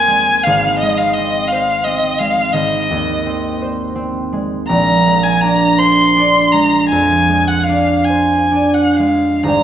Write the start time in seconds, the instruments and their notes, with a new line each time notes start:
Already playing: harp D#2 C4 A#4, violin G#5
0.08 harp G#3
0.43 harp G#1, violin F5
0.79 harp G#3, violin D#5
0.98 violin F5
1.14 harp C4, violin D#5
1.48 harp C5, violin F5
1.84 harp C4, violin D#5
2.19 harp G#3, violin F5
2.53 harp G#1, violin D#5
2.90 harp D#2
3.26 harp C4
3.62 harp C5
3.95 harp C4
4.33 harp G#3
4.67 harp A#1, violin A#5
5.06 harp G#3
5.23 violin G#5
5.41 harp D4, violin A#5
5.78 harp C5, violin C6
6.16 harp D4
6.52 harp G#3, violin A#5
6.89 harp F2, violin G#5
7.28 harp G#3
7.48 violin F#5
7.65 violin F5
7.69 harp D4
8.04 violin G#5
8.09 harp C5
8.51 harp D4
8.74 violin F#5
8.97 harp G#3, violin F5
9.43 harp G#1 G3 D#4 C5, violin A#5
9.47 harp G#5